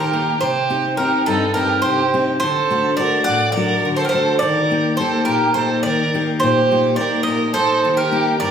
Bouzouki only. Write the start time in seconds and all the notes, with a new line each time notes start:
0.00 A#4
0.41 C5
0.97 A#4
1.26 A4
1.54 A#4
1.82 C5
2.40 C5
2.97 D5
3.24 F#5
3.52 D5
3.96 C5
4.05 A#4
4.09 C5
4.39 D5
4.97 C5
5.25 A#4
5.54 C5
5.83 D5
6.40 C5
6.96 D5
7.23 D#5
7.54 C5
7.97 A#4
8.40 D5